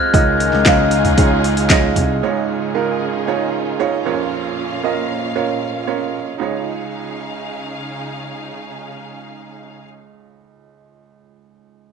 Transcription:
Already playing: C3 G#3 C4 F4 G#4 C5 D#5 F5 F6
0.12 C#2 G#2 C#3 D#3 C#4 D#4 F4 G#4 C#5 D#5, kick, open hi-hat
0.40 open hi-hat
0.53 C#2, snare
0.66 C#2 D#4 F4 G#4 C#5 F5, kick, snare, clap, open hi-hat
0.91 open hi-hat
1.05 floor tom, open hi-hat
1.18 C#2 D#4 F4 G#4 C#5 F5, kick, open hi-hat
1.44 open hi-hat
1.57 open hi-hat
1.70 D#4 F4 G#4 C#5 D#5, kick, snare, clap, open hi-hat
1.96 C2, floor tom, open hi-hat
2.23 C#2 G#2 C#3 C#4 D#4 F4 G#4 C#5
2.74 D#4 F4 G#4 A#4
3.27 D#4 F4 G#4 C#5
3.79 D#4 F4 G#4 C#5
4.05 A#1 F2 A#2 A#3 C#4 F4 A#4 C#5 F5
4.83 C#4 F4 A#4 D#5
5.35 C#4 F4 A#4 C#5
5.87 C#4 F4 A#4 C#5
6.38 C#2 C#3 C#4 D#4 F4 G#4 C#5 F5

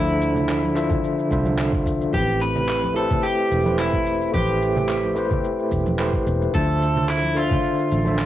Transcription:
Already playing: D2 D3 F3 D4 E4 F4 C5 E5
0.09 shaker
0.22 shaker
0.36 low conga, shaker
0.49 clap, shaker
0.63 high conga, shaker
0.75 D3 D4 F4 C5 E5, clap, shaker
0.90 kick, low conga, shaker
1.04 shaker
1.19 shaker
1.30 C2 D3 D4 F4 C5 E5, kick, shaker
1.45 high conga, shaker
1.58 clap, shaker
1.73 kick, shaker
1.86 kick, shaker
2.01 shaker
2.11 A1 A3 E4 G4 B4, kick, high conga, shaker
2.16 C4
2.28 shaker
2.41 B4, shaker
2.56 low conga, shaker
2.68 clap, shaker
2.83 high conga, shaker
2.94 A3 E4 G4 A4 B4, shaker
2.98 C5
3.11 kick, low conga, shaker
3.23 G4, shaker
3.38 shaker
3.51 E1, shaker
3.64 A3 E4 G4 B4, high conga, shaker
3.68 C5
3.79 E4, clap, shaker
3.93 kick, shaker
4.06 shaker
4.21 shaker
4.32 A1 A3 E4 G4 B4, kick, high conga, shaker
4.36 C5
4.49 shaker
4.62 shaker
4.76 low conga, shaker
4.89 clap, shaker
5.04 high conga, shaker
5.15 A3 E4 G4 B4, shaker
5.19 C5
5.31 kick, low conga, shaker
5.44 shaker
5.59 shaker
5.71 E1, kick, shaker
5.86 high conga, shaker
5.98 A3 E4 G4 B4 C5, clap, shaker
6.13 kick, shaker
6.27 E1, shaker
6.42 shaker
6.52 D2 D3 D4 F4 A4 C5, kick, high conga, shaker
6.56 E5
6.69 shaker
6.82 shaker
6.96 low conga, shaker
7.09 E4, clap, shaker
7.23 high conga, shaker
7.35 D3 D4 F4 C5, shaker
7.39 E5
7.51 kick, low conga, shaker
7.64 shaker
7.79 shaker
7.92 A1, shaker
8.04 D3 D4 F4 C5 E5, high conga, shaker
8.19 clap, shaker

